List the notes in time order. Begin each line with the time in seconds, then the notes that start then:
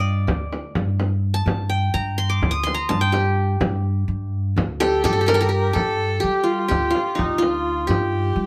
Already playing: G2 F5 G5
0.00 D5
0.27 D2, frame drum
0.53 frame drum
0.75 G2, frame drum
1.00 frame drum
1.34 A5
1.46 G2, frame drum
1.70 G5
1.94 G2 A#5
2.18 C6
2.30 D6
2.41 D2, frame drum
2.51 D#6
2.63 C6, frame drum
2.74 A#5
2.89 G2 A5, frame drum
3.01 G5
3.12 G4, frame drum
3.60 G2, frame drum
4.08 G2
4.56 D2, frame drum
4.80 G4 A4, frame drum
5.04 G2 G4 A4, frame drum
5.13 G4
5.21 G4
5.26 G4 A#4, frame drum
5.34 G4 A4
5.41 G4 A#4
5.49 G4
5.73 G2 A4, frame drum
6.20 G3 G4
6.44 F4
6.52 G4
6.59 F4
6.68 D2 G4, frame drum
6.91 F4
6.95 F4, frame drum
7.15 D2 D#4, frame drum
7.20 D#4
7.38 F4
7.42 F4, frame drum
7.87 G2 G4, frame drum
7.92 G4
8.36 G3